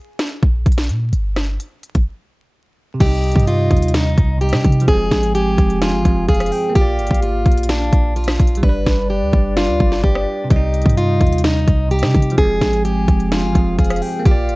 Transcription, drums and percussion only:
0.19 snare, closed hi-hat
0.43 kick
0.66 kick, closed hi-hat
0.72 closed hi-hat
0.78 snare, closed hi-hat
0.84 closed hi-hat
0.89 closed hi-hat
1.13 closed hi-hat
1.36 cross-stick, snare
1.60 closed hi-hat
1.83 closed hi-hat
1.95 kick, closed hi-hat
3.00 kick, closed hi-hat, crash
3.24 closed hi-hat
3.32 kick, closed hi-hat
3.39 closed hi-hat
3.47 closed hi-hat
3.71 kick, closed hi-hat
3.77 closed hi-hat
3.82 closed hi-hat
3.88 closed hi-hat
3.94 snare, closed hi-hat
4.18 kick, closed hi-hat
4.41 closed hi-hat
4.49 cross-stick, snare, closed hi-hat
4.57 closed hi-hat
4.64 kick, closed hi-hat
4.72 closed hi-hat
4.80 closed hi-hat
4.88 kick, closed hi-hat
5.11 kick, snare, closed hi-hat
5.23 closed hi-hat
5.35 closed hi-hat
5.58 kick, closed hi-hat
5.70 closed hi-hat
5.82 snare, closed hi-hat
6.05 kick, closed hi-hat
6.29 kick, closed hi-hat
6.35 closed hi-hat
6.40 cross-stick, closed hi-hat
6.46 closed hi-hat
6.52 open hi-hat
6.75 kick, closed hi-hat
6.99 closed hi-hat
7.07 kick, closed hi-hat
7.14 closed hi-hat
7.22 closed hi-hat
7.46 kick, closed hi-hat
7.52 closed hi-hat
7.57 closed hi-hat
7.63 closed hi-hat
7.69 snare, closed hi-hat
7.93 kick, closed hi-hat
8.16 closed hi-hat
8.24 cross-stick, snare, closed hi-hat
8.32 closed hi-hat
8.39 kick, closed hi-hat
8.47 closed hi-hat
8.55 closed hi-hat
8.63 kick
8.86 kick, snare
9.33 kick
9.57 snare
9.80 kick
9.92 snare
10.04 kick
10.15 cross-stick
10.50 kick, closed hi-hat
10.74 closed hi-hat
10.82 kick, closed hi-hat
10.89 closed hi-hat
10.97 closed hi-hat
11.21 kick, closed hi-hat
11.27 closed hi-hat
11.33 closed hi-hat
11.38 closed hi-hat
11.44 snare, closed hi-hat
11.68 kick, closed hi-hat
11.91 closed hi-hat
11.99 cross-stick, snare, closed hi-hat
12.07 closed hi-hat
12.14 kick, closed hi-hat
12.22 closed hi-hat
12.30 closed hi-hat
12.38 kick, closed hi-hat
12.61 kick, snare, closed hi-hat
12.73 closed hi-hat
12.85 closed hi-hat
13.08 kick, closed hi-hat
13.20 closed hi-hat
13.32 snare, closed hi-hat
13.55 kick, closed hi-hat
13.79 kick, closed hi-hat
13.85 closed hi-hat
13.90 cross-stick, closed hi-hat
13.96 closed hi-hat
14.02 open hi-hat
14.25 kick, closed hi-hat
14.49 closed hi-hat

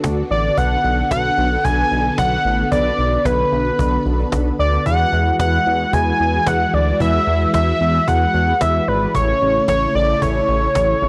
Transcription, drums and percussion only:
0.04 cajon bass, cajon slap
0.58 cajon bass
1.11 cajon bass, cajon slap
1.65 cajon bass
2.18 cajon bass, cajon slap
2.72 cajon bass
2.98 cajon slap
3.12 cajon slap
3.25 cajon bass, cajon slap
3.52 cajon slap
3.66 cajon slap
3.79 cajon bass
4.06 cajon slap
4.19 cajon slap
4.32 cajon bass, cajon slap
4.59 cajon slap
4.73 cajon slap
4.86 cajon bass
5.13 cajon slap
5.26 cajon slap
5.39 cajon bass, cajon slap
5.67 cajon slap
5.80 cajon slap
5.93 cajon bass
6.20 cajon slap
6.33 cajon slap
6.47 cajon bass, cajon slap
6.73 cajon slap
6.87 cajon slap
7.00 cajon bass
7.27 cajon slap
7.41 cajon slap
7.54 cajon bass, cajon slap
7.81 cajon slap
7.94 cajon slap
8.08 cajon bass
8.34 cajon slap
8.48 cajon slap
8.61 cajon bass, cajon slap
9.01 cajon slap
9.15 cajon bass
9.41 cajon slap
9.55 cajon slap
9.68 cajon bass, cajon slap
9.95 cajon slap
10.09 cajon slap
10.22 cajon bass
10.49 cajon slap
10.62 cajon slap
10.75 cajon bass, cajon slap

